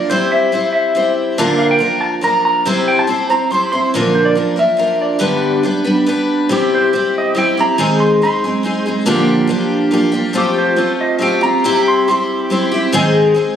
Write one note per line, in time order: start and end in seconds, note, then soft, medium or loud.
0.00 0.10 F3 soft
0.00 0.10 A#3 soft
0.10 0.52 C3 medium
0.10 0.51 G3 medium
0.10 0.52 C4 medium
0.10 0.53 E4 medium
0.10 0.31 C5 medium
0.10 0.53 C5 medium
0.32 0.71 E5 loud
0.52 0.94 G3 medium
0.52 0.94 C4 medium
0.52 0.95 E4 medium
0.52 0.96 C5 medium
0.73 1.13 E5 medium
0.95 1.37 G3 medium
0.95 1.37 C4 soft
0.95 1.38 E4 medium
0.95 1.38 C5 medium
1.38 1.80 A#2 medium
1.38 1.80 D3 medium
1.38 1.77 F3 medium
1.38 1.79 A#3 medium
1.38 1.79 D4 medium
1.38 1.80 A#4 medium
1.58 1.69 F5 medium
1.71 2.03 G5 medium
1.79 2.20 F3 soft
1.79 2.21 A#3 medium
1.79 2.22 D4 medium
1.79 2.23 A#4 medium
2.01 2.07 A5 medium
2.21 2.65 F3 medium
2.21 2.65 A#3 medium
2.21 2.66 D4 medium
2.21 2.66 A#4 medium
2.21 2.43 A#5 medium
2.45 2.64 A#5 medium
2.65 3.08 C3 medium
2.65 3.06 G3 medium
2.65 3.07 C4 medium
2.65 3.08 E4 medium
2.65 3.09 C5 medium
2.88 2.98 G5 medium
2.99 3.30 A5 loud
3.07 3.29 G3 medium
3.07 3.29 C4 medium
3.07 3.30 E4 medium
3.07 3.28 C5 medium
3.30 3.51 C4 soft
3.30 3.52 E4 soft
3.30 3.51 C5 soft
3.30 3.51 A#5 medium
3.51 3.72 G3 medium
3.51 3.73 C4 medium
3.51 3.72 E4 medium
3.51 3.71 C5 medium
3.51 3.71 C6 medium
3.72 3.95 C4 soft
3.72 3.94 E4 soft
3.72 3.94 C5 medium
3.72 3.92 C6 loud
3.94 4.36 A#2 medium
3.94 4.37 D3 medium
3.94 4.34 F3 medium
3.94 4.35 A#3 medium
3.94 4.37 D4 medium
3.94 4.37 A#4 medium
4.15 4.26 C5 medium
4.25 4.57 D5 loud
4.35 4.57 F3 medium
4.35 4.57 A#3 medium
4.35 4.56 D4 medium
4.35 4.55 A#4 medium
4.56 4.75 F3 soft
4.56 4.77 A#3 soft
4.56 4.78 D4 soft
4.56 4.78 A#4 medium
4.56 5.02 E5 medium
4.77 5.19 F3 medium
4.77 5.20 A#3 medium
4.77 5.20 D4 medium
4.77 5.21 A#4 medium
5.02 6.04 D5 medium
5.19 5.63 G2 medium
5.19 5.63 D3 medium
5.19 5.62 G3 medium
5.19 5.63 B3 medium
5.19 5.64 D4 medium
5.19 5.64 B4 medium
5.63 5.85 G3 medium
5.63 5.86 B3 medium
5.63 5.84 D4 medium
5.63 5.83 B4 medium
5.84 6.05 G3 medium
5.84 6.06 B3 soft
5.84 6.07 D4 medium
5.84 6.06 B4 medium
6.06 6.48 G3 medium
6.06 6.50 B3 medium
6.06 6.50 D4 medium
6.06 6.51 B4 medium
6.49 6.92 C3 medium
6.49 6.92 G3 medium
6.49 6.93 C4 medium
6.49 6.93 E4 medium
6.49 6.93 G4 medium
6.49 6.72 G4 medium
6.75 7.14 C5 medium
6.93 7.33 G3 medium
6.93 7.35 C4 medium
6.93 7.35 E4 medium
6.93 7.36 G4 medium
7.18 7.37 D#5 medium
7.35 7.56 G3 medium
7.35 7.57 C4 medium
7.35 7.57 E4 medium
7.35 7.56 G4 medium
7.35 7.58 G5 medium
7.57 7.78 C4 soft
7.57 7.79 E4 soft
7.57 7.78 G4 medium
7.57 8.00 A#5 medium
7.78 8.21 G#2 medium
7.78 8.21 D#3 medium
7.78 8.20 G#3 medium
7.78 8.21 C4 medium
7.78 8.22 D#4 medium
7.78 8.22 G#4 medium
8.00 8.21 C6 medium
8.22 8.43 G#3 medium
8.22 8.43 C4 medium
8.22 8.44 D#4 medium
8.22 8.43 G#4 medium
8.22 9.47 C6 medium
8.44 8.62 G#3 soft
8.44 8.63 C4 soft
8.44 8.64 D#4 soft
8.44 8.65 G#4 medium
8.63 8.85 G#3 medium
8.63 8.85 C4 medium
8.63 8.85 D#4 medium
8.63 8.85 G#4 medium
8.86 9.06 G#3 soft
8.86 9.06 C4 medium
8.86 9.07 D#4 medium
8.86 9.07 G#4 medium
9.06 9.49 A#2 medium
9.06 9.49 D3 medium
9.06 9.47 F3 medium
9.06 9.48 A#3 medium
9.06 9.49 D4 medium
9.06 9.50 G4 loud
9.47 9.90 F3 medium
9.47 9.91 A#3 medium
9.47 9.92 D4 medium
9.47 9.93 G4 medium
9.91 10.13 F3 medium
9.91 10.13 A#3 medium
9.91 10.12 D4 medium
9.91 10.11 G4 medium
10.12 10.32 F3 medium
10.12 10.34 A#3 medium
10.12 10.34 D4 medium
10.12 10.34 G4 medium
10.33 10.77 F3 medium
10.33 10.75 A3 medium
10.33 10.76 C4 medium
10.33 10.77 F4 medium
10.33 10.78 G4 medium
10.38 10.57 G4 medium
10.58 10.99 C5 medium
10.76 11.17 A3 medium
10.76 11.20 C4 medium
10.76 11.20 F4 medium
10.76 11.21 G4 medium
11.01 11.21 D#5 medium
11.19 11.41 A3 medium
11.19 11.42 C4 medium
11.19 11.42 F4 medium
11.19 11.40 G4 medium
11.23 11.43 G5 medium
11.41 11.64 C4 soft
11.41 11.64 F4 soft
11.41 11.63 G4 soft
11.41 11.84 A#5 medium
11.64 12.07 C3 medium
11.64 12.07 G3 medium
11.64 12.08 C4 medium
11.64 12.07 E4 medium
11.64 12.08 G4 medium
11.88 12.07 C6 medium
12.08 12.49 G3 medium
12.08 12.50 C4 medium
12.08 12.51 E4 medium
12.08 12.51 G4 medium
12.08 13.32 C6 medium
12.50 12.71 G3 medium
12.50 12.72 C4 medium
12.50 12.72 E4 medium
12.50 12.70 G4 medium
12.72 12.93 C4 soft
12.72 12.94 E4 medium
12.72 12.93 G4 medium
12.92 13.35 G#2 medium
12.92 13.35 D#3 medium
12.92 13.33 G#3 loud
12.92 13.35 C4 medium
12.92 13.35 D#4 medium
12.92 13.36 G#4 medium
13.34 13.56 G#3 medium
13.34 13.56 C4 medium
13.34 13.56 D#4 medium
13.34 13.56 G#4 medium